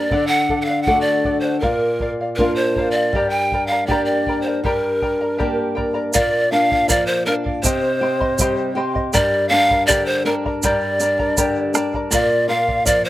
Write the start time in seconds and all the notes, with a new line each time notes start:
Already playing: A#4 D5 A#5
0.11 D3 A4 D5 F#5, bombo low
0.27 F#5
0.49 A4 D5 F#5, bombo low
0.62 F5 F#5
0.68 D5 F#5
0.83 F#5
0.87 A3 D4 F#4 A4 D5 F#5, bombo low
1.01 D5
1.25 A4 D5 F#5, bombo low
1.40 C5 D5 F#5
1.60 A#2 A#4 D5 F5, bombo low
2.00 A#4 D5 F5, bombo low
2.21 D5 F5
2.36 A#3 D4 F4 A#4, bombo low
2.40 A#4 D5 F5
2.56 C5
2.76 A#4 D5 F5, bombo low
2.91 D5
2.96 D5 F5
3.13 G2 G4 A#4 D5 G5 A#5, bombo low
3.30 G5
3.52 A#4 D5 G5 A#5, bombo low
3.67 F5
3.72 A#4 D5 A#5
3.87 A#3 D4 G4 D5 G5, bombo low
3.91 A#4 A#5
4.05 D5
4.26 A#4 D5 G5 A#5, bombo low
4.42 C5
4.47 A#4 D5 A#5
4.64 G2 G4 A#4 D5 G5 A#5, bombo low
5.02 A#4 D5 G5 A#5, bombo low
5.21 A#4 D5 A#5
5.38 A#3 D4 G4 A#4 D5 G5 A#5, bombo low
5.75 A#4 D5 G5 A#5, bombo low
5.94 A#4 D5 A#5
6.13 A#2 A#4 D5 F5, bombo low, shaker
6.52 D4 A#4 D5 F5
6.71 D5 F5, bombo low
6.88 F3 A#4 D5 F5, bombo low, shaker
7.07 C5
7.26 D4 A#4 D5 F5
7.44 D5 F5, bombo low
7.62 C3 G4 C5 D#5 G5 C6, bombo low, shaker
8.01 G4 C5 D#5 G5 C6
8.21 C5 D#5 C6, bombo low
8.38 G3 G4 C5 D#5 G5 C6, bombo low, shaker
8.75 G4 C5 D#5 G5 C6
8.95 C5 D#5 C6, bombo low
9.13 G2 G4 A#4 D5 G5 A#5, bombo low, shaker
9.49 D4 A#4 D5 F5 G5
9.53 A#5
9.71 A#4 D5 A#5, bombo low
9.87 D3 G4 A#4 D5 G5 A#5, bombo low, shaker
10.06 C5
10.25 D4 A#4 D5 G5 A#5
10.45 A#4 D5 A#5, bombo low
10.63 G2 G4 A#4 D5 G5 A#5, bombo low, shaker
11.00 D4 A#4 D5 G5 A#5, shaker
11.19 A#4 D5 A#5, bombo low
11.37 D3 G4 A#4 D5 G5 A#5, bombo low, shaker
11.74 D4 A#4 D5 G5 A#5, bombo rim, shaker
11.94 A#4 D5 A#5, bombo low
12.11 A#2 A#4 D5 F5, bombo low, shaker
12.48 F4 A#4 D5 F5
12.67 D5 F5, bombo low
12.85 F3 A#4 D5 F5, bombo low, shaker
13.05 C5